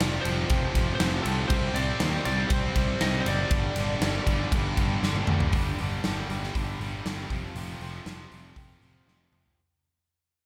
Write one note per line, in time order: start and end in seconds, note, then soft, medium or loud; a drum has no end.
0.00 0.18 F1 loud
0.00 0.25 F2 loud
0.00 0.25 C3 loud
0.00 1.50 F3 medium
0.00 0.25 F3 loud
0.00 3.49 C4 medium
0.00 3.49 G4 medium
0.00 0.25 D5 medium
0.00 snare loud
0.00 ride loud
0.21 0.94 C5 loud
0.21 ride medium
0.26 0.43 F1 medium
0.26 0.49 F2 medium
0.26 0.50 C3 medium
0.26 0.50 F3 loud
0.49 0.67 F1 loud
0.49 0.75 F2 medium
0.49 0.75 C3 medium
0.49 0.76 F3 loud
0.49 kick loud
0.49 ride loud
0.75 0.92 F1 medium
0.75 1.00 F2 medium
0.75 1.01 C3 medium
0.75 1.00 F3 loud
0.75 kick loud
0.75 ride medium
0.95 1.22 C5 loud
1.00 1.18 F1 medium
1.00 1.24 F2 loud
1.00 1.25 C3 loud
1.00 1.26 F3 loud
1.00 snare loud
1.00 ride loud
1.22 1.43 C2 medium
1.22 1.50 F2 loud
1.22 1.48 A4 medium
1.22 ride medium
1.26 1.49 C3 medium
1.26 1.51 F3 loud
1.48 1.67 C2 loud
1.48 1.74 C3 loud
1.48 1.75 G3 loud
1.48 1.75 C4 loud
1.48 1.76 C5 loud
1.48 3.50 D5 medium
1.48 kick loud
1.48 ride loud
1.74 1.92 C2 loud
1.74 1.99 C3 medium
1.74 2.00 G3 loud
1.74 2.00 C4 loud
1.74 2.24 D5 loud
1.74 ride medium
2.00 2.18 D#2 loud
2.00 2.24 C3 medium
2.00 2.25 G3 loud
2.00 2.25 C4 loud
2.00 snare loud
2.00 ride loud
2.25 2.44 C2 medium
2.25 2.48 C3 loud
2.25 2.50 G3 medium
2.25 2.49 C4 loud
2.25 2.50 D5 medium
2.25 ride medium
2.49 2.68 C2 medium
2.49 2.75 C3 medium
2.49 2.77 G3 loud
2.49 2.76 C4 loud
2.49 3.03 C5 medium
2.49 kick loud
2.49 ride loud
2.76 2.93 C2 medium
2.76 3.00 C3 loud
2.76 3.01 G3 loud
2.76 3.00 C4 loud
2.76 kick medium
2.76 ride medium
3.01 3.19 C2 loud
3.01 3.25 C3 loud
3.01 3.26 G3 loud
3.01 3.26 C4 loud
3.01 3.21 D#5 loud
3.01 snare loud
3.01 ride medium
3.21 3.28 C5 medium
3.26 3.44 F#1 medium
3.26 3.50 C3 medium
3.26 3.53 G3 loud
3.26 3.51 C4 medium
3.26 5.25 D5 loud
3.26 ride medium
3.50 3.68 G1 loud
3.50 3.79 G2 loud
3.50 3.79 D3 loud
3.50 5.51 G3 medium
3.50 3.79 G3 loud
3.50 5.51 D4 medium
3.50 5.51 A4 medium
3.50 kick loud
3.50 ride loud
3.76 3.94 G1 loud
3.76 ride medium
3.80 4.02 G2 medium
3.80 4.03 D3 loud
3.80 4.03 G3 loud
4.01 4.19 G1 loud
4.01 4.28 G2 medium
4.01 4.28 D3 loud
4.01 4.29 G3 loud
4.01 snare loud
4.01 ride loud
4.27 4.44 G1 loud
4.27 4.54 G2 medium
4.27 4.54 D3 loud
4.27 4.55 G3 medium
4.27 kick medium
4.27 ride medium
4.52 4.70 G1 loud
4.52 4.78 G2 medium
4.52 4.80 D3 medium
4.52 kick loud
4.52 ride loud
4.56 4.79 G3 medium
4.77 4.95 G1 medium
4.77 5.04 G2 medium
4.77 5.05 D3 medium
4.77 5.05 G3 loud
4.77 kick loud
4.77 ride medium
5.03 5.20 G1 medium
5.03 5.29 G2 loud
5.03 5.29 D3 loud
5.03 5.30 G3 loud
5.03 snare medium
5.16 high tom medium
5.27 5.46 D2 medium
5.27 5.53 G2 medium
5.27 5.53 D3 medium
5.27 mid tom loud
5.31 5.54 G3 medium
5.40 floor tom loud
5.52 5.72 G1 loud
5.52 5.79 G2 medium
5.52 5.80 D3 medium
5.52 5.79 G3 medium
5.52 kick loud
5.52 open hi-hat medium
5.78 5.98 G1 medium
5.78 6.03 G2 medium
5.78 6.05 D3 medium
5.78 6.04 G3 medium
5.78 open hi-hat medium
6.04 6.23 G1 medium
6.04 6.29 G2 medium
6.04 6.29 D3 loud
6.04 6.30 G3 loud
6.04 snare loud
6.04 open hi-hat medium
6.29 6.48 G1 medium
6.29 6.53 G2 medium
6.29 6.53 D3 medium
6.29 6.54 G3 medium
6.29 open hi-hat soft
6.43 snare soft
6.54 6.74 G1 medium
6.54 6.79 G2 medium
6.54 6.79 D3 medium
6.54 6.79 G3 loud
6.54 kick medium
6.54 open hi-hat medium
6.80 6.99 G1 medium
6.80 7.04 G2 medium
6.80 7.05 D3 medium
6.80 7.05 G3 medium
6.80 open hi-hat soft
7.05 7.24 G1 medium
7.05 7.29 G2 medium
7.05 7.30 D3 loud
7.05 7.30 G3 loud
7.05 snare loud
7.05 open hi-hat medium
7.30 7.49 F1 medium
7.30 7.55 F2 medium
7.30 7.55 C3 loud
7.30 7.56 F3 medium
7.30 kick medium
7.30 open hi-hat soft
7.54 7.74 F1 loud
7.54 7.80 F2 medium
7.54 7.81 C3 medium
7.54 7.80 F3 loud
7.54 open hi-hat medium
7.80 7.99 F1 medium
7.80 8.05 F2 medium
7.80 8.05 C3 medium
7.80 8.06 F3 medium
7.80 open hi-hat soft
8.06 8.25 F1 medium
8.06 8.30 F2 medium
8.06 8.30 C3 loud
8.06 8.31 F3 loud
8.06 snare medium
8.06 open hi-hat medium
8.31 8.51 F1 medium
8.31 8.56 F2 medium
8.31 8.56 C3 medium
8.31 8.56 F3 medium
8.31 open hi-hat soft
8.56 8.76 F1 medium
8.56 8.81 F2 medium
8.56 8.81 C3 medium
8.56 8.82 F3 loud
8.56 kick loud
8.56 open hi-hat medium
8.82 9.01 F1 medium
8.82 9.05 F2 medium
8.82 9.06 C3 medium
8.82 9.07 F3 medium
8.82 open hi-hat soft
9.07 9.26 F1 medium
9.07 9.32 F2 medium
9.07 9.33 C3 medium
9.07 9.33 F3 loud
9.07 snare soft
9.32 9.51 F1 medium
9.32 9.57 F2 medium
9.32 9.57 C3 medium
9.32 9.57 F3 medium
9.32 mid tom medium
9.46 floor tom medium